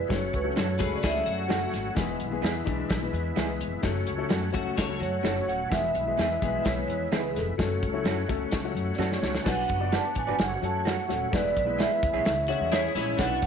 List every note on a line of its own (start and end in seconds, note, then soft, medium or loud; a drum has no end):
0.00 0.12 B4 medium
0.08 0.27 F#1 medium
0.08 0.37 F#3 medium
0.08 1.95 F#3 medium
0.08 0.37 A3 medium
0.08 1.95 A3 medium
0.08 1.94 C#4 medium
0.08 0.37 C#4 medium
0.08 1.95 F#4 medium
0.08 0.37 A4 medium
0.08 kick loud
0.08 snare loud
0.08 closed hi-hat medium
0.13 0.23 C#5 medium
0.33 0.51 C#2 medium
0.33 0.59 B4 medium
0.33 kick medium
0.33 closed hi-hat medium
0.44 0.72 F#3 medium
0.44 0.72 A3 medium
0.44 0.72 C#4 medium
0.44 0.73 A4 medium
0.56 0.82 F#2 loud
0.56 0.66 C#4 medium
0.56 0.66 F#4 medium
0.56 0.67 A4 medium
0.56 snare loud
0.56 closed hi-hat medium
0.61 0.95 C#5 medium
0.79 0.97 C#2 medium
0.79 1.07 F#3 medium
0.79 1.07 A3 medium
0.79 1.08 C#4 medium
0.79 1.02 G#4 medium
0.79 1.08 A4 medium
0.79 1.02 B4 medium
0.79 kick medium
0.79 closed hi-hat medium
0.96 1.00 D5 medium
1.03 1.20 C#2 medium
1.03 1.26 E4 medium
1.03 1.26 G#4 medium
1.03 1.29 E5 medium
1.03 kick loud
1.03 snare loud
1.03 closed hi-hat medium
1.13 1.42 F#3 medium
1.13 1.42 A3 medium
1.13 1.42 C#4 medium
1.13 1.42 A4 medium
1.26 1.44 F#2 medium
1.26 1.93 F#4 medium
1.26 1.72 F#5 medium
1.26 closed hi-hat medium
1.48 1.68 F#1 medium
1.48 1.86 F#3 medium
1.48 1.86 A3 medium
1.48 1.86 C#4 medium
1.48 1.59 C#4 medium
1.48 1.60 F#4 medium
1.48 1.56 G#4 medium
1.48 1.60 A4 medium
1.48 snare loud
1.48 closed hi-hat medium
1.55 1.90 A4 medium
1.73 1.91 G#1 medium
1.73 snare soft
1.73 closed hi-hat medium
1.95 2.14 E1 medium
1.95 2.24 E3 medium
1.95 3.82 E3 medium
1.95 2.24 G#3 medium
1.95 3.82 G#3 medium
1.95 3.82 B3 medium
1.95 2.24 B3 medium
1.95 3.82 E4 medium
1.95 2.24 G#4 medium
1.95 kick loud
1.95 snare medium
1.95 closed hi-hat medium
2.20 2.37 B1 medium
2.20 closed hi-hat medium
2.31 2.59 E3 medium
2.31 2.59 G#3 medium
2.31 2.60 B3 medium
2.31 2.60 G#4 medium
2.42 2.60 E2 loud
2.42 2.53 B3 medium
2.42 2.53 E4 medium
2.42 2.54 G#4 medium
2.42 snare loud
2.42 closed hi-hat medium
2.65 2.84 B1 medium
2.65 2.94 E3 medium
2.65 2.94 G#3 medium
2.65 2.94 B3 medium
2.65 2.94 D4 loud
2.65 kick medium
2.65 closed hi-hat medium
2.90 3.08 B1 medium
2.90 kick loud
2.90 snare loud
2.90 closed hi-hat medium
3.00 3.29 E3 medium
3.00 3.29 G#3 medium
3.00 3.29 B3 medium
3.00 3.29 E4 medium
3.13 3.30 E2 loud
3.13 closed hi-hat medium
3.36 3.62 C#2 medium
3.36 3.73 E3 medium
3.36 3.73 G#3 medium
3.36 3.46 B3 medium
3.36 3.74 B3 medium
3.36 3.47 E4 medium
3.36 3.74 G#4 medium
3.36 3.47 G#4 medium
3.36 snare medium
3.36 closed hi-hat medium
3.60 3.78 F1 medium
3.60 closed hi-hat medium
3.82 4.01 F#1 medium
3.82 4.11 F#3 medium
3.82 5.70 F#3 medium
3.82 4.11 A3 medium
3.82 5.70 A3 medium
3.82 4.11 C#4 medium
3.82 5.69 C#4 medium
3.82 5.69 F#4 medium
3.82 4.12 A4 loud
3.82 kick loud
3.82 snare medium
3.82 closed hi-hat medium
4.06 4.24 C#2 medium
4.06 closed hi-hat medium
4.17 4.46 F#3 medium
4.17 4.46 A3 medium
4.17 4.46 C#4 medium
4.17 4.47 A4 loud
4.29 4.47 F#2 loud
4.29 4.40 C#4 medium
4.29 4.40 F#4 medium
4.29 4.41 A4 medium
4.29 snare loud
4.29 closed hi-hat medium
4.52 4.71 C#2 medium
4.52 4.81 F#3 medium
4.52 4.81 A3 medium
4.52 4.81 C#4 medium
4.52 4.76 F#4 medium
4.52 4.82 A4 loud
4.52 kick loud
4.52 closed hi-hat medium
4.77 5.02 C#2 medium
4.77 5.00 A4 medium
4.77 5.00 C#5 medium
4.77 kick medium
4.77 snare loud
4.77 closed hi-hat medium
4.88 5.17 F#3 medium
4.88 5.17 A3 medium
4.88 5.17 C#4 medium
4.88 5.17 A4 medium
5.00 5.18 F#2 medium
5.00 5.67 F#4 medium
5.00 5.50 C#5 medium
5.00 closed hi-hat medium
5.23 5.41 F#1 medium
5.23 5.61 F#3 medium
5.23 5.61 A3 medium
5.23 5.33 C#4 medium
5.23 5.61 C#4 medium
5.23 5.34 F#4 medium
5.23 5.61 A4 medium
5.23 5.34 A4 medium
5.23 snare loud
5.23 closed hi-hat medium
5.47 5.65 D#1 medium
5.47 5.72 F#5 loud
5.47 closed hi-hat medium
5.69 5.89 E1 medium
5.69 7.56 E3 medium
5.69 5.98 E3 medium
5.69 7.56 G#3 medium
5.69 5.99 G#3 medium
5.69 7.56 B3 medium
5.69 5.99 B3 medium
5.69 7.56 E4 medium
5.69 5.99 G#4 medium
5.69 6.69 E5 loud
5.69 kick medium
5.69 snare loud
5.69 closed hi-hat medium
5.95 6.12 B1 loud
5.95 closed hi-hat medium
6.06 6.34 E3 medium
6.06 6.34 G#3 medium
6.06 6.34 B3 medium
6.06 6.34 G#4 medium
6.18 6.36 E2 medium
6.18 6.27 B3 medium
6.18 6.28 E4 medium
6.18 6.28 G#4 medium
6.18 snare medium
6.18 closed hi-hat medium
6.42 6.59 B1 medium
6.42 6.69 E3 medium
6.42 6.69 G#3 medium
6.42 6.70 B3 medium
6.42 6.70 G#4 loud
6.42 kick medium
6.42 closed hi-hat medium
6.65 6.82 B1 loud
6.65 7.10 C#5 medium
6.65 kick medium
6.65 snare loud
6.65 closed hi-hat medium
6.76 7.04 E3 medium
6.76 7.04 G#3 medium
6.76 7.04 B3 medium
6.76 7.05 G#4 medium
6.88 7.05 E2 loud
6.88 closed hi-hat medium
7.12 7.37 C#2 medium
7.12 7.48 E3 medium
7.12 7.49 G#3 medium
7.12 7.21 B3 medium
7.12 7.49 B3 medium
7.12 7.22 E4 medium
7.12 7.49 G#4 medium
7.12 7.22 G#4 medium
7.12 7.30 B4 medium
7.12 snare loud
7.12 closed hi-hat medium
7.30 7.36 G#4 medium
7.35 7.52 F1 medium
7.35 8.26 A4 medium
7.35 snare soft
7.35 closed hi-hat medium
7.58 7.76 F#1 medium
7.58 7.86 F#3 medium
7.58 9.43 F#3 medium
7.58 9.43 A3 medium
7.58 7.86 A3 medium
7.58 9.43 C#4 medium
7.58 7.86 C#4 medium
7.58 9.43 F#4 medium
7.58 7.87 A4 medium
7.58 kick loud
7.58 snare loud
7.58 closed hi-hat medium
7.83 8.00 C#2 medium
7.83 kick medium
7.83 closed hi-hat medium
7.93 8.21 F#3 medium
7.93 8.21 A3 medium
7.93 8.21 C#4 medium
7.93 8.21 E4 loud
8.04 8.21 F#2 medium
8.04 8.15 C#4 medium
8.04 8.15 F#4 medium
8.04 8.16 A4 medium
8.04 snare medium
8.04 closed hi-hat medium
8.28 8.46 C#2 medium
8.28 8.56 F#3 medium
8.28 8.56 A3 medium
8.28 8.56 C#4 medium
8.28 8.57 A4 medium
8.28 kick medium
8.28 closed hi-hat medium
8.51 8.69 C#2 medium
8.51 kick loud
8.51 snare loud
8.51 closed hi-hat medium
8.64 8.92 F#3 medium
8.64 8.92 A3 medium
8.64 8.92 C#4 medium
8.64 8.92 F#4 medium
8.75 8.92 F#2 medium
8.75 closed hi-hat medium
8.95 9.15 F#2 medium
8.95 9.35 F#3 medium
8.95 9.36 A3 medium
8.95 9.08 C#4 medium
8.95 9.00 D5 soft
8.99 9.36 C#4 medium
8.99 9.09 F#4 medium
8.99 9.36 A4 medium
8.99 9.09 A4 medium
8.99 9.41 C#5 medium
8.99 snare medium
9.12 snare medium
9.23 9.39 C#2 medium
9.23 snare medium
9.35 snare medium
9.41 11.30 F#3 medium
9.41 9.72 F#3 medium
9.41 10.37 B3 medium
9.41 9.73 B3 medium
9.41 10.37 D4 medium
9.41 10.37 F#4 medium
9.41 9.47 G#5 medium
9.45 9.63 B1 loud
9.45 9.73 D4 medium
9.45 9.73 B4 medium
9.45 9.95 F#5 medium
9.45 kick medium
9.45 snare loud
9.45 crash medium
9.69 9.95 F#1 medium
9.69 kick medium
9.69 closed hi-hat medium
9.79 10.16 F#3 medium
9.79 10.17 B3 medium
9.79 10.17 D4 medium
9.79 10.17 D5 medium
9.92 10.02 F#4 medium
9.92 10.02 B4 medium
9.92 10.03 D5 medium
9.92 10.18 A5 medium
9.92 snare medium
9.92 closed hi-hat medium
10.15 10.24 A1 medium
10.15 10.41 G#5 medium
10.15 kick medium
10.15 closed hi-hat medium
10.27 10.36 G#1 medium
10.27 10.39 F#3 medium
10.27 10.39 B3 medium
10.27 10.40 D4 medium
10.27 10.36 F#4 medium
10.27 10.35 B4 medium
10.27 10.40 B4 medium
10.27 10.35 D5 medium
10.38 10.56 F#1 medium
10.38 11.32 A3 medium
10.38 11.32 C#4 medium
10.38 11.32 F#4 medium
10.38 10.64 F#5 medium
10.38 snare loud
10.38 closed hi-hat medium
10.62 10.96 F#2 medium
10.62 10.99 F#3 medium
10.62 10.99 A3 medium
10.62 10.99 C#4 medium
10.62 11.00 A4 medium
10.62 10.75 A5 medium
10.62 closed hi-hat medium
10.85 10.95 F#4 medium
10.85 10.96 A4 medium
10.85 10.96 C#5 medium
10.85 11.35 F#5 medium
10.85 snare loud
10.85 closed hi-hat medium
11.08 11.26 D#1 medium
11.08 11.27 F#3 medium
11.08 11.27 A3 medium
11.08 11.28 C#4 medium
11.08 11.28 A4 medium
11.08 snare soft
11.08 closed hi-hat medium
11.31 11.50 E1 loud
11.31 13.17 E3 medium
11.31 11.59 G#3 medium
11.31 13.17 G#3 medium
11.31 11.59 B3 medium
11.31 12.25 B3 medium
11.31 11.60 E4 medium
11.31 12.24 E4 medium
11.31 11.60 B4 medium
11.31 11.81 D5 medium
11.31 kick loud
11.31 snare loud
11.31 closed hi-hat medium
11.57 11.82 B1 medium
11.57 kick medium
11.57 closed hi-hat medium
11.65 12.03 G#3 medium
11.65 12.03 B3 medium
11.65 12.03 E4 medium
11.65 12.04 B4 medium
11.79 11.88 B3 medium
11.79 11.89 E4 medium
11.79 11.89 G#4 medium
11.79 12.76 E5 medium
11.79 snare loud
11.79 closed hi-hat medium
12.03 12.11 C#2 medium
12.03 kick loud
12.03 closed hi-hat medium
12.12 12.22 B1 medium
12.12 12.25 G#3 medium
12.12 12.25 B3 medium
12.12 12.22 B3 medium
12.12 12.25 E4 medium
12.12 12.22 E4 medium
12.12 12.21 G#4 medium
12.12 12.25 C#5 medium
12.25 12.51 C#2 loud
12.25 13.18 C#4 medium
12.25 13.18 E4 medium
12.25 snare loud
12.25 closed hi-hat medium
12.48 12.85 G#3 medium
12.48 12.86 C#4 medium
12.48 12.86 E4 medium
12.48 12.71 F#4 medium
12.48 12.86 C#5 medium
12.48 closed hi-hat medium
12.61 12.86 E2 medium
12.72 12.94 E4 medium
12.72 12.81 E4 medium
12.72 12.94 G#4 medium
12.72 12.82 G#4 medium
12.72 12.82 C#5 medium
12.72 13.22 C#5 medium
12.72 snare loud
12.72 closed hi-hat medium
12.95 13.12 A#1 medium
12.95 13.14 G#3 medium
12.95 13.14 C#4 medium
12.95 13.40 C#4 medium
12.95 13.40 E4 medium
12.95 13.14 E4 medium
12.95 13.15 C#5 medium
12.95 snare soft
12.95 closed hi-hat medium
13.17 13.36 B1 loud
13.17 13.47 F#3 medium
13.17 13.47 B3 medium
13.17 13.46 B3 medium
13.17 13.47 D4 medium
13.17 13.46 D4 medium
13.17 13.47 F#4 medium
13.17 13.46 F#4 medium
13.17 13.47 D5 medium
13.17 13.47 F#5 loud
13.17 kick medium
13.17 snare medium
13.17 closed hi-hat medium
13.42 13.47 F#1 medium
13.42 kick medium
13.42 closed hi-hat medium